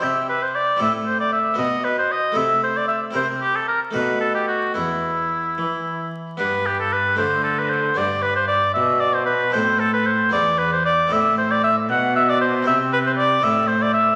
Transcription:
<<
  \new Staff \with { instrumentName = "Oboe" } { \time 6/8 \key e \minor \tempo 4. = 76 e''8 b'16 c''16 d''8 e''8 c''16 d''16 e''8 | dis''8 b'16 c''16 dis''8 e''8 c''16 d''16 e''8 | c''8 g'16 a'16 bes'8 b'8 a'16 g'16 fis'8 | e'2~ e'8 r8 |
\key g \major b'8 g'16 a'16 b'8 c''8 a'16 b'16 c''8 | d''8 b'16 c''16 d''8 e''8 d''16 c''16 b'8 | c''8 a'16 b'16 c''8 d''8 b'16 c''16 d''8 | e''8 c''16 d''16 e''8 fis''8 e''16 d''16 c''8 |
\key c \lydian e''8 b'16 c''16 d''8 e''8 c''16 d''16 e''8 | }
  \new Staff \with { instrumentName = "Harpsichord" } { \time 6/8 \key e \minor <c' e' g'>4. <c' e' a'>4. | <b fis'>4. <a e' a'>4. | <c' e' bes'>4. <a dis' fis'>4. | <b e'>2. |
\key g \major <b d'>4. <a d'>4. | <b d'>2. | <c' e' a'>4. <b e' gis'>4. | <c' e' a'>2. |
\key c \lydian <c' e' g'>4. <c' e' a'>4. | }
  \new Staff \with { instrumentName = "Harpsichord" } { \clef bass \time 6/8 \key e \minor c4. a,4. | b,4. c4. | c4. b,4. | e,4. e4. |
\key g \major g,4. d4. | g,4. b,4. | a,4. e,4. | a,4. b,4. |
\key c \lydian c4. a,4. | }
  \new Staff \with { instrumentName = "Cello" } { \clef bass \time 6/8 \key e \minor c4. a,4. | b,4. c4. | c4. b,4. | e,4. e4. |
\key g \major g,4. d4. | g,4. b,4. | a,4. e,4. | a,4. b,4. |
\key c \lydian c4. a,4. | }
>>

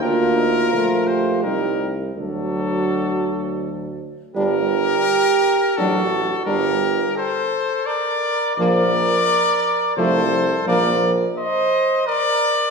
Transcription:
<<
  \new Staff \with { instrumentName = "Trumpet" } { \time 3/4 \key g \minor \tempo 4 = 85 bes'4. c''8 bes'8 r8 | a'2~ a'8 r8 | bes'2 a'4 | bes'4 c''4 d''4 |
d''2 c''4 | d''8 r8 ees''4 d''4 | }
  \new Staff \with { instrumentName = "Flugelhorn" } { \time 3/4 \key g \minor d'8 ees'8 f'8 g'4 r8 | fis'2~ fis'8 r8 | g'2 fis'4 | g'4 a'4 bes'4 |
bes'2 a'4 | bes'8 r8 c''4 bes'4 | }
  \new Staff \with { instrumentName = "French horn" } { \time 3/4 \key g \minor f'2 ees'8 r8 | d'2~ d'8 r8 | d'8 r4. d'8 r8 | d'8 r2 r8 |
bes8 r4. a8 r8 | bes8 r2 r8 | }
  \new Staff \with { instrumentName = "Euphonium" } { \clef bass \time 3/4 \key g \minor bes4 a4 g8 r8 | fis2~ fis8 r8 | g8 r4. fis8 r8 | g8 r2 r8 |
f8 r4. f8 r8 | f8 r2 r8 | }
  \new Staff \with { instrumentName = "Tuba" } { \clef bass \time 3/4 \key g \minor d,4 bes,,4 c,4 | d,2~ d,8 r8 | g,,4 r4 a,,4 | g,,4 r2 |
bes,,4 r4 c,4 | bes,,4 r2 | }
>>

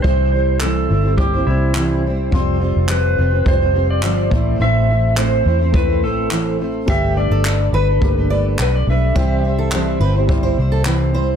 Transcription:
<<
  \new Staff \with { instrumentName = "Electric slide guitar" } { \time 4/4 \key c \lydian \tempo 4 = 105 c''4 a'4 g'8 e'4 r8 | r4 b'4 c''8. d''4~ d''16 | e''4 c''4 b'8 a'4 r8 | e''8 d''4 b'4 r8 b'16 d''16 e''8~ |
e''4. r2 r8 | }
  \new Staff \with { instrumentName = "Steel-string acoustic guitar" } { \time 4/4 \key c \lydian r1 | r1 | r1 | g'8 r16 a'8 r16 b'16 r8. d''16 r4 r16 |
g'8 r16 a'8 r16 b'16 r8 c''16 r16 a'16 b'16 r16 c''16 r16 | }
  \new Staff \with { instrumentName = "Felt piano" } { \time 4/4 \key c \lydian <g e' c''>4. r8 <g e' c''>4. r8 | <f g c' f'>4. r8 <g f' b' c''>4. <a e' c''>8~ | <a e' c''>4 r4 <a e' c''>4. r8 | <a g' b'>4. r8 <a g' bes' b'>4. r8 |
<g e' c''>4. r8 <g e' c''>4. r8 | }
  \new Staff \with { instrumentName = "Steel-string acoustic guitar" } { \time 4/4 \key c \lydian <c e g c' e' c''>8 <g c' e' c''>8 <c e g c' e' c''>8 <g c' e' c''>16 <g c' e' c''>8 <g c' e' c''>16 <g c' e' c''>8 <c e g c' e' c''>8 <g c' e' c''>8 | <f g c' f' c''>8 <g c' f' c''>8 <f g c' f' c''>8 <g c' f' c''>16 <c' f' c''>8 <c' f' c''>16 <g c' f' c''>8 <f g c' f' c''>8 <a c' e' c''>8 | <a, e a c' e' c''>8 <a c' e' c''>8 <a, e a c' e' c''>8 <a c' e' c''>16 <a c' e' c''>8 <a c' e' c''>16 <a c' e' c''>8 <a, e a c' e' c''>8 <a c' e' c''>8 | <g d' a' b'>8 <g d' a' b'>8 <g d' a' b'>8 <g d' a' b'>16 <d' a' b'>8 <d' a' b'>16 <g d' a' b'>8 <g d' a' b'>8 <g d' a' b'>8 |
<c e g c' e' c''>8 <g c' e' c''>8 <c e g c' e' c''>8 <g c' e' c''>16 <g c' e' c''>8 <g c' e' c''>16 <g c' e' c''>8 <c e g c' e' c''>8 <g c' e' c''>8 | }
  \new Staff \with { instrumentName = "Fingered electric bass" } { \clef bass \time 4/4 \key c \lydian c,4. g,,4 c,4. | f,,8. f,,8. f,,8 f,,4 g,,8 a,,8 | a,,4. e,4 a,,4. | g,,8. g,,8. g,,8 g,,4 b,,8 b,,8 |
c,4. g,,4 c,4. | }
  \new DrumStaff \with { instrumentName = "Drums" } \drummode { \time 4/4 bd4 hc4 bd4 hc4 | bd4 hc4 bd4 hc8 bd8 | r4 hc4 bd4 hc4 | bd4 hc4 bd4 hc4 |
bd4 hc4 bd4 hc4 | }
>>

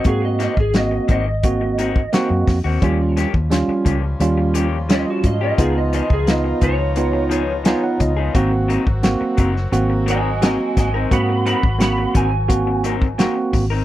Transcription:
<<
  \new Staff \with { instrumentName = "Clean electric guitar" } { \time 4/4 \key aes \mixolydian \tempo 4 = 87 aes'16 ees''16 ees''16 aes'16 ees''8 ees''2~ ees''8~ | ees''8 r2 r8 ees''16 ges'16 ees''16 ees''16 | aes'16 ees''16 ees''16 aes'16 ees''8 des''2~ des''8 | r2 r8 <ees'' aes''>8 <ees'' aes''>8 <ees'' aes''>8 |
<ges'' ces'''>8 <ges'' ces'''>8 <ges'' ces'''>8 aes''2 r8 | }
  \new Staff \with { instrumentName = "Clean electric guitar" } { \time 4/4 \key aes \mixolydian r8 <ees bes c' ges'>16 r8. <ees bes c' ges'>16 r8. <ees bes c' ges'>16 r16 <ees bes c' ges'>16 r8 <bes c' ges'>16 | <f bes des' g'>16 r16 <f bes des' g'>16 r8. <f bes des' g'>16 r8. <f bes des' g'>16 r16 <f bes des' g'>16 r8 <bes des' g'>16 | <f ces' ees' aes'>16 r16 <f ces' ees' aes'>16 r8. <f ces' ees' aes'>16 r8. <f ces' ees' aes'>16 r16 <f ces' ees' aes'>16 r8 <ces' ees' aes'>16 | <ges c' ees' bes'>16 r16 <ges c' ees' bes'>16 r8. <ges c' ees' bes'>16 r8. <ges c' ees' bes'>16 r16 <ges c' ees' bes'>16 r8 <c' ees' bes'>16 |
r8 <ges c' ees' bes'>16 r8. <ges c' ees' bes'>16 r8. <ges c' ees' bes'>16 r16 <ges c' ees' bes'>16 r8 <c' ees' bes'>16 | }
  \new Staff \with { instrumentName = "Tine electric piano" } { \time 4/4 \key aes \mixolydian << { r1 | r1 | r2. aes''16 ges''16 ees''8 | r1 |
r1 | } \\ { <bes c' ges'>8 r8 <bes c' ges'>8 r8 <bes c' ges'>8 r8 <bes c' ges'>8 r8 | <g des' f'>8 r8 <g des' f'>8 r8 <g des' f'>8 r8 <g des' f'>8 r8 | <ces' ees' f'>8 r8 <ces' ees' f'>8 r8 <ces' ees' f'>8 r8 <ces' ees' f'>8 r8 | <bes c' ges'>8 r8 <bes c' ges'>8 r8 <bes c' ges'>8 r8 <bes c' ges'>8 r8 |
<bes c' ges'>8 r8 <bes c' ges'>8 r8 <bes c' ges'>8 r8 <bes c' ges'>8 r8 | } >> }
  \new Staff \with { instrumentName = "Horn section" } { \time 4/4 \key aes \mixolydian << { r1 | f'1~ | f'1 | ges'1~ |
ges'1 | } \\ { r1 | <f g des'>1 | <ees ces' ees'>1 | <ges bes c'>1~ |
<ges bes c'>1 | } >> }
  \new Staff \with { instrumentName = "Fingered electric bass" } { \clef bass \time 4/4 \key aes \mixolydian aes,8. aes,,8. aes,,4.~ aes,,16 ges,16 f,16 ees,16 | ees,8. ees,8 r16 des,8 ees,4. aes,8 | des,8. des,8. des,2 des,8 | aes,,8. aes,,8 r16 ges,,8 aes,,4. aes,,8 |
aes,8. aes,,8. aes,,2 aes,,8 | }
  \new DrumStaff \with { instrumentName = "Drums" } \drummode { \time 4/4 <hh bd>8 <hh sn>16 bd16 <hh sn>8 <hh bd>8 <hh bd>8 hh16 bd16 <hh sn>8 <hho bd sn>8 | <hh bd>8 <hh sn>16 bd16 <hh sn>8 <hh bd>8 hh8 hh8 <hh sn>8 <hh bd>8 | <hh bd>8 hh16 bd16 <hh sn>8 <hh bd>8 hh8 hh8 <hh sn>8 <hh bd>8 | <hh bd>8 hh16 bd16 <hh sn>8 <hh bd>16 sn16 hh8 hh8 <hh sn>8 <hh bd sn>8 |
<hh bd>8 hh16 bd16 <hh sn>8 <hh bd>8 <hh bd>8 hh16 bd16 <hh sn>8 <hho bd>8 | }
>>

